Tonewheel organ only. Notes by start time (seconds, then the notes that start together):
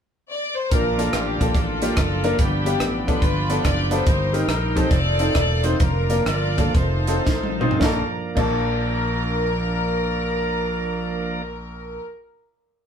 0.72 F3 A#3 D4 F4
2.39 B3 G4
4.07 D#3 A#3 C4
4.92 A3 C4 F4
5.79 D3 F3 A#3
6.75 D#3 A3 C4 F4
7.81 F3 A#3 D4 A#4